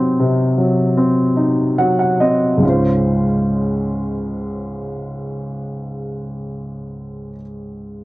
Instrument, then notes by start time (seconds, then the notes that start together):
grand piano
Already playing: C3 F#3 C4 D#4
0.20 C3
0.58 F#3
0.97 C4
1.36 D#4
1.78 F#3 F#5
1.99 F#5
2.20 C4 D#5
2.57 C#2 G#2
2.62 G#3 C#4
2.67 F4 C5